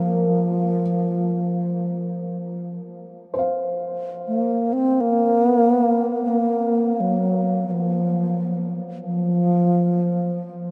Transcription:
0.00 2.79 F3 medium
3.34 10.71 C5 soft
3.39 10.71 F5 soft
4.28 4.75 A#3 medium
4.73 5.02 C4 medium
5.01 5.46 A#3 medium
5.46 5.58 B3 medium
5.58 5.71 A#3 medium
5.71 5.83 B3 medium
5.83 6.24 A#3 medium
6.24 7.02 A#3 medium
7.00 7.66 F#3 medium
7.68 8.79 F3 medium
7.68 7.73 F#3 soft
9.06 10.71 F3 medium

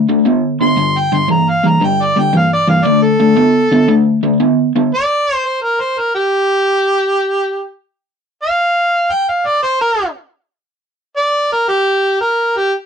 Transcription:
0.09 0.24 D3 medium
0.09 0.25 A3 medium
0.26 0.58 D3 medium
0.26 0.58 B3 loud
0.61 0.76 D3 medium
0.61 0.77 B3 medium
0.61 1.00 C6 medium
0.77 1.09 G2 medium
0.77 1.09 D3 medium
0.99 1.16 G5 medium
1.12 1.27 G2 medium
1.12 1.28 D3 medium
1.12 1.31 C6 medium
1.28 1.61 G2 medium
1.28 1.61 E3 medium
1.28 1.50 A#5 medium
1.49 1.68 F5 medium
1.64 1.79 G2 medium
1.64 1.80 E3 medium
1.64 1.86 A#5 medium
1.81 2.13 G2 medium
1.81 2.13 D3 medium
1.81 2.04 G5 medium
2.02 2.21 D5 medium
2.16 2.32 G2 medium
2.16 2.32 D3 medium
2.16 2.35 G5 medium
2.33 2.65 G2 medium
2.33 2.65 E3 medium
2.33 2.52 F5 medium
2.53 2.69 D5 loud
2.68 2.83 G2 medium
2.68 2.84 E3 medium
2.68 2.86 F5 medium
2.84 3.17 D3 medium
2.84 3.17 A3 medium
2.84 3.02 D5 medium
3.02 4.03 A4 medium
3.20 3.36 D3 medium
3.20 3.36 A3 medium
3.37 3.68 D3 medium
3.37 3.69 B3 medium
3.72 3.87 D3 medium
3.72 3.88 B3 medium
3.88 4.20 D3 medium
3.88 4.20 A3 medium
4.23 4.39 D3 medium
4.23 4.39 A3 medium
4.40 4.72 D3 medium
4.40 4.72 B3 loud
4.76 4.91 D3 medium
4.76 4.91 B3 medium
4.95 5.35 D5 loud
5.35 5.46 C5 loud
5.46 5.62 C5 medium
5.62 5.82 A#4 medium
5.81 6.00 C5 medium
5.99 6.14 A#4 medium
6.15 7.66 G4 loud
8.43 9.13 F5 loud
9.11 9.26 G5 loud
9.29 9.48 F5 medium
9.47 9.61 D5 loud
9.63 9.78 C5 loud
9.81 10.07 A#4 loud
11.17 11.50 D5 loud
11.52 11.67 A#4 medium
11.68 12.18 G4 loud
12.21 12.58 A#4 medium
12.57 12.72 G4 medium

